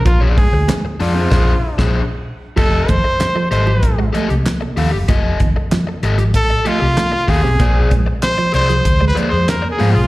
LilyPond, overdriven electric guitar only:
\new Staff \with { instrumentName = "Overdriven electric guitar" } { \time 4/4 \key bes \major \tempo 4 = 96 r16 <d' aes' d''>16 r4 <d' aes' d''>16 <d' aes' c''>16 <d' aes' c''>8 r16 <d' aes' c''>8 r8. | <g' a' ees''>8 r4 <g' a' ees''>16 r8. <g' a' ees''>16 r8. <g' a' f''>16 r16 | <g' a' ees''>8 r4 <g' a' ees''>16 r8. <g' a' ees''>16 r8. <g' a' f''>16 r16 | <aes' c'' d''>8 r4 <aes' c'' d''>16 r8. <aes' c'' d''>16 r8. <aes' c'' f''>16 r16 | }